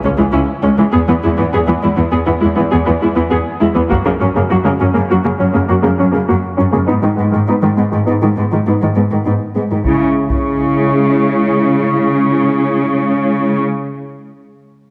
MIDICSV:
0, 0, Header, 1, 4, 480
1, 0, Start_track
1, 0, Tempo, 594059
1, 757, Time_signature, 5, 2, 24, 8
1, 12043, End_track
2, 0, Start_track
2, 0, Title_t, "Viola section"
2, 0, Program_c, 0, 48
2, 29, Note_on_c, 0, 61, 44
2, 30, Note_on_c, 0, 56, 42
2, 79, Note_off_c, 0, 56, 0
2, 79, Note_off_c, 0, 61, 0
2, 141, Note_on_c, 0, 52, 45
2, 143, Note_on_c, 0, 56, 39
2, 193, Note_off_c, 0, 52, 0
2, 194, Note_off_c, 0, 56, 0
2, 260, Note_on_c, 0, 64, 49
2, 264, Note_on_c, 0, 61, 43
2, 311, Note_off_c, 0, 64, 0
2, 315, Note_off_c, 0, 61, 0
2, 506, Note_on_c, 0, 61, 42
2, 508, Note_on_c, 0, 56, 41
2, 556, Note_off_c, 0, 61, 0
2, 558, Note_off_c, 0, 56, 0
2, 628, Note_on_c, 0, 56, 43
2, 629, Note_on_c, 0, 52, 47
2, 678, Note_off_c, 0, 56, 0
2, 679, Note_off_c, 0, 52, 0
2, 745, Note_on_c, 0, 59, 52
2, 745, Note_on_c, 0, 68, 58
2, 795, Note_off_c, 0, 68, 0
2, 796, Note_off_c, 0, 59, 0
2, 870, Note_on_c, 0, 52, 34
2, 872, Note_on_c, 0, 59, 36
2, 919, Note_off_c, 0, 52, 0
2, 921, Note_off_c, 0, 59, 0
2, 992, Note_on_c, 0, 64, 40
2, 994, Note_on_c, 0, 56, 42
2, 1041, Note_off_c, 0, 64, 0
2, 1043, Note_off_c, 0, 56, 0
2, 1110, Note_on_c, 0, 52, 34
2, 1110, Note_on_c, 0, 59, 39
2, 1159, Note_off_c, 0, 59, 0
2, 1160, Note_off_c, 0, 52, 0
2, 1234, Note_on_c, 0, 59, 52
2, 1234, Note_on_c, 0, 68, 58
2, 1282, Note_off_c, 0, 68, 0
2, 1283, Note_off_c, 0, 59, 0
2, 1353, Note_on_c, 0, 59, 41
2, 1354, Note_on_c, 0, 52, 41
2, 1402, Note_off_c, 0, 52, 0
2, 1402, Note_off_c, 0, 59, 0
2, 1470, Note_on_c, 0, 56, 40
2, 1473, Note_on_c, 0, 64, 39
2, 1519, Note_off_c, 0, 56, 0
2, 1522, Note_off_c, 0, 64, 0
2, 1590, Note_on_c, 0, 59, 37
2, 1591, Note_on_c, 0, 52, 35
2, 1639, Note_off_c, 0, 59, 0
2, 1640, Note_off_c, 0, 52, 0
2, 1705, Note_on_c, 0, 59, 58
2, 1706, Note_on_c, 0, 68, 57
2, 1755, Note_off_c, 0, 59, 0
2, 1756, Note_off_c, 0, 68, 0
2, 1825, Note_on_c, 0, 52, 42
2, 1825, Note_on_c, 0, 59, 42
2, 1875, Note_off_c, 0, 59, 0
2, 1876, Note_off_c, 0, 52, 0
2, 1939, Note_on_c, 0, 56, 42
2, 1939, Note_on_c, 0, 64, 45
2, 1991, Note_off_c, 0, 56, 0
2, 1991, Note_off_c, 0, 64, 0
2, 2062, Note_on_c, 0, 59, 39
2, 2064, Note_on_c, 0, 52, 41
2, 2113, Note_off_c, 0, 59, 0
2, 2115, Note_off_c, 0, 52, 0
2, 2187, Note_on_c, 0, 68, 58
2, 2189, Note_on_c, 0, 59, 53
2, 2237, Note_off_c, 0, 68, 0
2, 2239, Note_off_c, 0, 59, 0
2, 2308, Note_on_c, 0, 59, 44
2, 2310, Note_on_c, 0, 52, 46
2, 2358, Note_off_c, 0, 59, 0
2, 2360, Note_off_c, 0, 52, 0
2, 2432, Note_on_c, 0, 56, 46
2, 2435, Note_on_c, 0, 64, 44
2, 2481, Note_off_c, 0, 56, 0
2, 2483, Note_off_c, 0, 64, 0
2, 2547, Note_on_c, 0, 52, 45
2, 2550, Note_on_c, 0, 59, 45
2, 2597, Note_off_c, 0, 52, 0
2, 2599, Note_off_c, 0, 59, 0
2, 2670, Note_on_c, 0, 59, 57
2, 2670, Note_on_c, 0, 68, 58
2, 2719, Note_off_c, 0, 68, 0
2, 2720, Note_off_c, 0, 59, 0
2, 2907, Note_on_c, 0, 56, 43
2, 2908, Note_on_c, 0, 64, 45
2, 2957, Note_off_c, 0, 56, 0
2, 2958, Note_off_c, 0, 64, 0
2, 3025, Note_on_c, 0, 52, 42
2, 3027, Note_on_c, 0, 59, 46
2, 3075, Note_off_c, 0, 52, 0
2, 3077, Note_off_c, 0, 59, 0
2, 3142, Note_on_c, 0, 58, 60
2, 3145, Note_on_c, 0, 66, 60
2, 3193, Note_off_c, 0, 58, 0
2, 3195, Note_off_c, 0, 66, 0
2, 3270, Note_on_c, 0, 49, 40
2, 3271, Note_on_c, 0, 58, 35
2, 3319, Note_off_c, 0, 49, 0
2, 3320, Note_off_c, 0, 58, 0
2, 3397, Note_on_c, 0, 54, 39
2, 3397, Note_on_c, 0, 61, 40
2, 3445, Note_off_c, 0, 54, 0
2, 3445, Note_off_c, 0, 61, 0
2, 3517, Note_on_c, 0, 49, 34
2, 3518, Note_on_c, 0, 58, 44
2, 3565, Note_off_c, 0, 49, 0
2, 3566, Note_off_c, 0, 58, 0
2, 3631, Note_on_c, 0, 58, 62
2, 3633, Note_on_c, 0, 66, 61
2, 3680, Note_off_c, 0, 58, 0
2, 3682, Note_off_c, 0, 66, 0
2, 3756, Note_on_c, 0, 49, 41
2, 3756, Note_on_c, 0, 58, 42
2, 3804, Note_off_c, 0, 49, 0
2, 3804, Note_off_c, 0, 58, 0
2, 3874, Note_on_c, 0, 54, 37
2, 3876, Note_on_c, 0, 61, 45
2, 3922, Note_off_c, 0, 54, 0
2, 3925, Note_off_c, 0, 61, 0
2, 3989, Note_on_c, 0, 58, 42
2, 3992, Note_on_c, 0, 49, 34
2, 4039, Note_off_c, 0, 58, 0
2, 4041, Note_off_c, 0, 49, 0
2, 4114, Note_on_c, 0, 58, 54
2, 4116, Note_on_c, 0, 66, 60
2, 4162, Note_off_c, 0, 58, 0
2, 4164, Note_off_c, 0, 66, 0
2, 4238, Note_on_c, 0, 49, 44
2, 4240, Note_on_c, 0, 58, 40
2, 4286, Note_off_c, 0, 49, 0
2, 4287, Note_off_c, 0, 58, 0
2, 4350, Note_on_c, 0, 54, 39
2, 4356, Note_on_c, 0, 61, 36
2, 4400, Note_off_c, 0, 54, 0
2, 4404, Note_off_c, 0, 61, 0
2, 4469, Note_on_c, 0, 49, 37
2, 4469, Note_on_c, 0, 58, 38
2, 4518, Note_off_c, 0, 49, 0
2, 4518, Note_off_c, 0, 58, 0
2, 4591, Note_on_c, 0, 58, 58
2, 4594, Note_on_c, 0, 66, 57
2, 4640, Note_off_c, 0, 58, 0
2, 4643, Note_off_c, 0, 66, 0
2, 4708, Note_on_c, 0, 49, 40
2, 4708, Note_on_c, 0, 58, 39
2, 4757, Note_off_c, 0, 58, 0
2, 4758, Note_off_c, 0, 49, 0
2, 4829, Note_on_c, 0, 54, 42
2, 4834, Note_on_c, 0, 61, 44
2, 4879, Note_off_c, 0, 54, 0
2, 4882, Note_off_c, 0, 61, 0
2, 4945, Note_on_c, 0, 49, 45
2, 4945, Note_on_c, 0, 58, 41
2, 4995, Note_off_c, 0, 58, 0
2, 4996, Note_off_c, 0, 49, 0
2, 5073, Note_on_c, 0, 58, 49
2, 5073, Note_on_c, 0, 66, 45
2, 5122, Note_off_c, 0, 58, 0
2, 5122, Note_off_c, 0, 66, 0
2, 5305, Note_on_c, 0, 54, 39
2, 5309, Note_on_c, 0, 61, 40
2, 5355, Note_off_c, 0, 54, 0
2, 5358, Note_off_c, 0, 61, 0
2, 5426, Note_on_c, 0, 58, 42
2, 5430, Note_on_c, 0, 49, 40
2, 5476, Note_off_c, 0, 58, 0
2, 5480, Note_off_c, 0, 49, 0
2, 5549, Note_on_c, 0, 59, 56
2, 5550, Note_on_c, 0, 63, 54
2, 5599, Note_off_c, 0, 59, 0
2, 5599, Note_off_c, 0, 63, 0
2, 5672, Note_on_c, 0, 56, 34
2, 5673, Note_on_c, 0, 51, 33
2, 5721, Note_off_c, 0, 56, 0
2, 5722, Note_off_c, 0, 51, 0
2, 5785, Note_on_c, 0, 56, 38
2, 5788, Note_on_c, 0, 59, 37
2, 5836, Note_off_c, 0, 56, 0
2, 5838, Note_off_c, 0, 59, 0
2, 5909, Note_on_c, 0, 51, 35
2, 5909, Note_on_c, 0, 56, 31
2, 5958, Note_off_c, 0, 51, 0
2, 5959, Note_off_c, 0, 56, 0
2, 6038, Note_on_c, 0, 63, 42
2, 6040, Note_on_c, 0, 59, 48
2, 6086, Note_off_c, 0, 63, 0
2, 6087, Note_off_c, 0, 59, 0
2, 6152, Note_on_c, 0, 51, 31
2, 6157, Note_on_c, 0, 56, 31
2, 6201, Note_off_c, 0, 51, 0
2, 6205, Note_off_c, 0, 56, 0
2, 6273, Note_on_c, 0, 59, 30
2, 6274, Note_on_c, 0, 56, 33
2, 6322, Note_off_c, 0, 56, 0
2, 6322, Note_off_c, 0, 59, 0
2, 6393, Note_on_c, 0, 56, 28
2, 6396, Note_on_c, 0, 51, 29
2, 6442, Note_off_c, 0, 56, 0
2, 6444, Note_off_c, 0, 51, 0
2, 6509, Note_on_c, 0, 63, 43
2, 6510, Note_on_c, 0, 59, 40
2, 6559, Note_off_c, 0, 59, 0
2, 6559, Note_off_c, 0, 63, 0
2, 6634, Note_on_c, 0, 51, 29
2, 6637, Note_on_c, 0, 56, 33
2, 6682, Note_off_c, 0, 51, 0
2, 6685, Note_off_c, 0, 56, 0
2, 6762, Note_on_c, 0, 56, 32
2, 6765, Note_on_c, 0, 59, 31
2, 6809, Note_off_c, 0, 56, 0
2, 6811, Note_off_c, 0, 59, 0
2, 6880, Note_on_c, 0, 51, 28
2, 6880, Note_on_c, 0, 56, 31
2, 6927, Note_off_c, 0, 51, 0
2, 6927, Note_off_c, 0, 56, 0
2, 7003, Note_on_c, 0, 63, 40
2, 7005, Note_on_c, 0, 59, 36
2, 7050, Note_off_c, 0, 63, 0
2, 7051, Note_off_c, 0, 59, 0
2, 7126, Note_on_c, 0, 56, 28
2, 7128, Note_on_c, 0, 51, 27
2, 7172, Note_off_c, 0, 56, 0
2, 7174, Note_off_c, 0, 51, 0
2, 7240, Note_on_c, 0, 56, 30
2, 7240, Note_on_c, 0, 59, 30
2, 7287, Note_off_c, 0, 56, 0
2, 7288, Note_off_c, 0, 59, 0
2, 7359, Note_on_c, 0, 56, 26
2, 7361, Note_on_c, 0, 51, 31
2, 7407, Note_off_c, 0, 56, 0
2, 7408, Note_off_c, 0, 51, 0
2, 7475, Note_on_c, 0, 59, 28
2, 7478, Note_on_c, 0, 63, 34
2, 7524, Note_off_c, 0, 59, 0
2, 7526, Note_off_c, 0, 63, 0
2, 7718, Note_on_c, 0, 56, 27
2, 7720, Note_on_c, 0, 59, 25
2, 7766, Note_off_c, 0, 56, 0
2, 7767, Note_off_c, 0, 59, 0
2, 7836, Note_on_c, 0, 56, 26
2, 7839, Note_on_c, 0, 51, 24
2, 7884, Note_off_c, 0, 56, 0
2, 7886, Note_off_c, 0, 51, 0
2, 7964, Note_on_c, 0, 64, 34
2, 7965, Note_on_c, 0, 56, 34
2, 8102, Note_off_c, 0, 56, 0
2, 8102, Note_off_c, 0, 64, 0
2, 8316, Note_on_c, 0, 64, 36
2, 8318, Note_on_c, 0, 56, 36
2, 10971, Note_off_c, 0, 56, 0
2, 10971, Note_off_c, 0, 64, 0
2, 12043, End_track
3, 0, Start_track
3, 0, Title_t, "Cello section"
3, 0, Program_c, 1, 48
3, 36, Note_on_c, 1, 37, 37
3, 84, Note_off_c, 1, 37, 0
3, 152, Note_on_c, 1, 37, 34
3, 201, Note_off_c, 1, 37, 0
3, 272, Note_on_c, 1, 37, 58
3, 321, Note_off_c, 1, 37, 0
3, 517, Note_on_c, 1, 37, 38
3, 565, Note_off_c, 1, 37, 0
3, 637, Note_on_c, 1, 37, 38
3, 685, Note_off_c, 1, 37, 0
3, 757, Note_on_c, 1, 40, 56
3, 805, Note_off_c, 1, 40, 0
3, 881, Note_on_c, 1, 40, 43
3, 928, Note_off_c, 1, 40, 0
3, 1003, Note_on_c, 1, 40, 41
3, 1050, Note_off_c, 1, 40, 0
3, 1123, Note_on_c, 1, 40, 43
3, 1170, Note_off_c, 1, 40, 0
3, 1241, Note_on_c, 1, 40, 49
3, 1289, Note_off_c, 1, 40, 0
3, 1359, Note_on_c, 1, 40, 42
3, 1406, Note_off_c, 1, 40, 0
3, 1476, Note_on_c, 1, 40, 44
3, 1524, Note_off_c, 1, 40, 0
3, 1597, Note_on_c, 1, 40, 44
3, 1645, Note_off_c, 1, 40, 0
3, 1713, Note_on_c, 1, 40, 59
3, 1762, Note_off_c, 1, 40, 0
3, 1842, Note_on_c, 1, 40, 40
3, 1889, Note_off_c, 1, 40, 0
3, 1967, Note_on_c, 1, 40, 45
3, 2013, Note_off_c, 1, 40, 0
3, 2081, Note_on_c, 1, 40, 45
3, 2128, Note_off_c, 1, 40, 0
3, 2201, Note_on_c, 1, 40, 60
3, 2248, Note_off_c, 1, 40, 0
3, 2326, Note_on_c, 1, 40, 44
3, 2372, Note_off_c, 1, 40, 0
3, 2441, Note_on_c, 1, 40, 42
3, 2488, Note_off_c, 1, 40, 0
3, 2560, Note_on_c, 1, 40, 37
3, 2607, Note_off_c, 1, 40, 0
3, 2673, Note_on_c, 1, 40, 56
3, 2722, Note_off_c, 1, 40, 0
3, 2918, Note_on_c, 1, 40, 43
3, 2966, Note_off_c, 1, 40, 0
3, 3039, Note_on_c, 1, 40, 42
3, 3087, Note_off_c, 1, 40, 0
3, 3161, Note_on_c, 1, 42, 58
3, 3208, Note_off_c, 1, 42, 0
3, 3279, Note_on_c, 1, 42, 46
3, 3327, Note_off_c, 1, 42, 0
3, 3405, Note_on_c, 1, 42, 43
3, 3451, Note_off_c, 1, 42, 0
3, 3528, Note_on_c, 1, 42, 45
3, 3574, Note_off_c, 1, 42, 0
3, 3645, Note_on_c, 1, 42, 56
3, 3691, Note_off_c, 1, 42, 0
3, 3765, Note_on_c, 1, 42, 41
3, 3812, Note_off_c, 1, 42, 0
3, 3885, Note_on_c, 1, 42, 43
3, 3931, Note_off_c, 1, 42, 0
3, 4013, Note_on_c, 1, 42, 44
3, 4058, Note_off_c, 1, 42, 0
3, 4129, Note_on_c, 1, 42, 57
3, 4175, Note_off_c, 1, 42, 0
3, 4245, Note_on_c, 1, 42, 39
3, 4291, Note_off_c, 1, 42, 0
3, 4366, Note_on_c, 1, 42, 41
3, 4412, Note_off_c, 1, 42, 0
3, 4489, Note_on_c, 1, 42, 40
3, 4534, Note_off_c, 1, 42, 0
3, 4604, Note_on_c, 1, 42, 53
3, 4651, Note_off_c, 1, 42, 0
3, 4729, Note_on_c, 1, 42, 41
3, 4775, Note_off_c, 1, 42, 0
3, 4852, Note_on_c, 1, 42, 39
3, 4897, Note_off_c, 1, 42, 0
3, 4968, Note_on_c, 1, 42, 37
3, 5014, Note_off_c, 1, 42, 0
3, 5094, Note_on_c, 1, 42, 54
3, 5138, Note_off_c, 1, 42, 0
3, 5331, Note_on_c, 1, 42, 35
3, 5376, Note_off_c, 1, 42, 0
3, 5456, Note_on_c, 1, 42, 33
3, 5501, Note_off_c, 1, 42, 0
3, 5571, Note_on_c, 1, 44, 49
3, 5616, Note_off_c, 1, 44, 0
3, 5692, Note_on_c, 1, 44, 38
3, 5737, Note_off_c, 1, 44, 0
3, 5811, Note_on_c, 1, 44, 35
3, 5856, Note_off_c, 1, 44, 0
3, 5934, Note_on_c, 1, 44, 34
3, 5979, Note_off_c, 1, 44, 0
3, 6044, Note_on_c, 1, 44, 44
3, 6090, Note_off_c, 1, 44, 0
3, 6168, Note_on_c, 1, 44, 35
3, 6214, Note_off_c, 1, 44, 0
3, 6286, Note_on_c, 1, 44, 34
3, 6332, Note_off_c, 1, 44, 0
3, 6408, Note_on_c, 1, 44, 33
3, 6454, Note_off_c, 1, 44, 0
3, 6527, Note_on_c, 1, 44, 46
3, 6573, Note_off_c, 1, 44, 0
3, 6646, Note_on_c, 1, 44, 31
3, 6692, Note_off_c, 1, 44, 0
3, 6770, Note_on_c, 1, 44, 33
3, 6815, Note_off_c, 1, 44, 0
3, 6887, Note_on_c, 1, 44, 30
3, 6933, Note_off_c, 1, 44, 0
3, 7002, Note_on_c, 1, 44, 39
3, 7049, Note_off_c, 1, 44, 0
3, 7127, Note_on_c, 1, 44, 30
3, 7173, Note_off_c, 1, 44, 0
3, 7238, Note_on_c, 1, 44, 28
3, 7286, Note_off_c, 1, 44, 0
3, 7361, Note_on_c, 1, 44, 25
3, 7408, Note_off_c, 1, 44, 0
3, 7482, Note_on_c, 1, 44, 36
3, 7529, Note_off_c, 1, 44, 0
3, 7727, Note_on_c, 1, 44, 24
3, 7773, Note_off_c, 1, 44, 0
3, 7848, Note_on_c, 1, 44, 25
3, 7893, Note_off_c, 1, 44, 0
3, 7965, Note_on_c, 1, 49, 32
3, 8102, Note_off_c, 1, 49, 0
3, 8326, Note_on_c, 1, 49, 38
3, 10975, Note_off_c, 1, 49, 0
3, 12043, End_track
4, 0, Start_track
4, 0, Title_t, "Taiko and cinematic ensemble drums"
4, 3159, Note_on_c, 9, 41, 49
4, 3240, Note_off_c, 9, 41, 0
4, 7955, Note_on_c, 9, 41, 32
4, 8035, Note_off_c, 9, 41, 0
4, 8317, Note_on_c, 9, 41, 33
4, 8398, Note_off_c, 9, 41, 0
4, 12043, End_track
0, 0, End_of_file